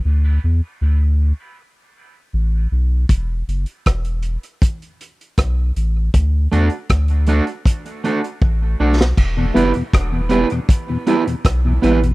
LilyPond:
<<
  \new Staff \with { instrumentName = "Clean electric guitar" } { \time 4/4 \key e \minor \tempo 4 = 79 r1 | r1 | r8 <a d' fis' a'>8 r8 <a d' fis' a'>8 r8 <a d' fis' a'>8 r8 <a d' fis' a'>8 | r8 <b e' g' b'>8 r8 <b e' g' b'>8 r8 <b e' g' b'>8 r8 <b e' g' b'>8 | }
  \new Staff \with { instrumentName = "Tonewheel organ" } { \clef bass \time 4/4 \key e \minor << { r1 | r1 | r1 | r8 <g b e'>8 r8 <g b e'>8 r8 <g b e'>8 r8 <g b e'>8 | } \\ { r1 | r1 | r1 | r16 <e, b,>16 r16 <e, b,>16 r16 <e, b,>16 r16 <e, b,>16 r16 <e, b,>16 r16 <e, b,>16 r16 <e, b,>16 r16 <e, b,>16 | } >> }
  \new Staff \with { instrumentName = "Sub bass" } { \clef bass \time 4/4 \key e \minor d,8 e,16 r16 d,8. r4 r16 a,,8 b,,8 | e,,8 fis,,16 r16 e,,8. r4 r16 b,,8 a,,8 | d,8 e,16 r16 d,8. r4 r16 a,,8 b,,8 | e,,8 fis,,16 r16 e,,8. r4 r16 b,,8 a,,8 | }
  \new DrumStaff \with { instrumentName = "Drums" } \drummode { \time 4/4 r4 r4 r4 r4 | <hh bd>8 hh16 hh16 <hh bd ss>16 hh16 hh16 hh16 <hh bd>16 hh16 hh16 hh16 <hh bd ss>8 hh8 | <hh bd>8 hh16 hh16 <hh bd ss>16 hh16 hh16 hh16 <hh bd>16 hh16 hh16 hh16 bd8. sn16 | <cymc bd>8 hh16 hh16 <hh bd ss>8 hh16 hh16 <hh bd>8 hh16 hh16 <hh bd ss>8 hh16 hh16 | }
>>